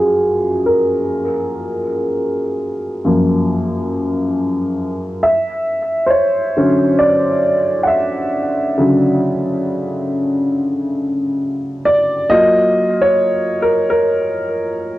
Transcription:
Already playing: F#2 F3 A#3 F4 F#4 G#4 A#4
0.66 A#4
3.05 F#2 F3 A#3
5.23 E5
6.06 C5 C#5
6.57 D3 F#3 C#4
6.99 D5
7.83 F#5
7.87 E5
8.78 C#3 D3 F#3
11.85 D5
12.29 F#3 A#3 F4 D#5
13.02 C#5
13.62 A#4
13.90 A#4

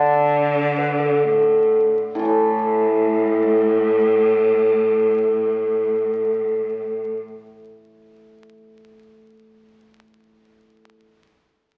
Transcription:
Already playing: D3 D5
0.77 B4
0.99 A4
1.25 A2 A4
2.15 A2
2.19 E3
2.25 A2 A3 A4

